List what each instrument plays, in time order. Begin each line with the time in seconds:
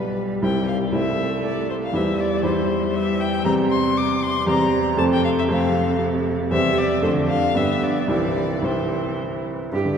Already playing: grand piano B1 G3 F4 D5, cello G3, violin B4
0.42 grand piano C2 G3 E4 C5, violin G5
0.68 violin F5
0.92 grand piano C2 G3 E4 C5, cello A3, violin E5
1.44 violin D5
1.70 violin C5
1.84 violin F5
1.93 grand piano E2 G3 E4 C5, cello G3, violin E5
2.20 violin D5
2.43 grand piano E2 G3 E4 C5, violin C5
2.95 cello G3, violin E5
3.20 violin G5
3.45 grand piano E2 G3 C4 C5, cello C3, violin A#5
3.71 violin C6
3.97 violin D6
4.23 violin C6
4.47 grand piano E2 G3 C4 C5, cello C3, violin A#5
4.97 grand piano F2 A3 C4 C5, cello C3, violin A5
5.13 violin G5
5.25 violin F5
5.39 violin E5
5.49 grand piano F2 A3 C4 C5, cello C3, violin F5
6.51 grand piano E2 G3 C4 C5, cello C3, violin E5
6.78 violin D5
7.02 grand piano F2 A3 D4 A4, cello D3, violin C5
7.30 violin F5
7.55 grand piano G2 B3 D4 G4, cello D3, violin E5
7.83 violin D5
8.08 grand piano C2 C4 E4 G4, cello E3, violin D5
8.62 grand piano C2 C4 E4 G4, cello E3, violin C5
9.72 grand piano G2, cello G4
9.85 grand piano D3